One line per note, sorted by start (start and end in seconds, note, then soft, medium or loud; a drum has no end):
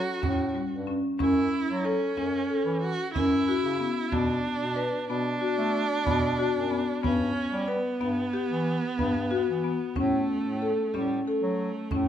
0.00 0.88 F#4 medium
0.22 0.64 A2 medium
0.22 0.43 C#4 medium
0.22 frame drum medium
0.55 0.76 G3 medium
0.72 0.99 G2 medium
0.87 1.08 C#4 medium
0.87 frame drum soft
1.19 1.47 F#2 medium
1.19 1.61 C#4 medium
1.19 1.86 E4 medium
1.19 frame drum medium
1.69 1.96 F#3 medium
1.84 2.80 C#4 medium
1.84 2.06 A4 medium
2.17 2.45 F#2 medium
2.17 2.38 C#4 medium
2.17 frame drum soft
2.50 2.92 A4 medium
2.65 2.93 E3 medium
2.81 3.12 F#4 medium
3.13 3.56 F#2 medium
3.13 3.36 C#4 medium
3.13 4.13 E4 medium
3.13 frame drum medium
3.48 3.69 F#4 medium
3.63 3.90 C#3 medium
3.80 4.01 B3 medium
4.11 4.39 B2 medium
4.11 4.54 B3 medium
4.11 5.08 D4 medium
4.11 frame drum medium
4.60 4.88 B2 medium
4.76 4.97 B4 medium
5.09 5.36 B2 medium
5.09 5.31 B3 medium
5.09 7.00 D4 loud
5.41 5.83 F#4 medium
5.58 5.85 A3 medium
6.06 6.48 B2 loud
6.06 6.27 B3 medium
6.06 frame drum medium
6.39 6.60 F#4 medium
6.55 6.83 F#2 medium
6.71 6.92 B3 medium
7.03 7.31 G2 medium
7.03 7.45 B3 medium
7.03 7.69 C#4 medium
7.03 frame drum medium
7.53 7.80 G3 medium
7.68 9.98 B3 medium
7.68 7.89 B4 medium
8.01 8.28 G2 medium
8.01 8.22 B3 medium
8.01 frame drum soft
8.33 8.75 G4 medium
8.50 8.78 E3 medium
8.99 9.40 G2 medium
8.99 9.20 B3 medium
8.99 frame drum medium
9.31 9.52 F#4 medium
9.47 9.75 E3 medium
9.64 9.85 B3 medium
9.96 10.24 A2 medium
9.96 10.95 A3 medium
9.96 10.38 C#4 medium
9.96 frame drum medium
10.45 10.72 A2 medium
10.62 10.82 A4 medium
10.62 frame drum soft
10.94 11.21 A2 medium
10.94 11.25 G3 medium
10.94 11.15 C#4 medium
10.94 frame drum soft
11.25 12.08 A3 medium
11.25 11.69 A4 medium
11.42 11.70 F#3 medium
11.91 12.08 A2 medium
11.91 12.08 C#4 medium
11.91 frame drum medium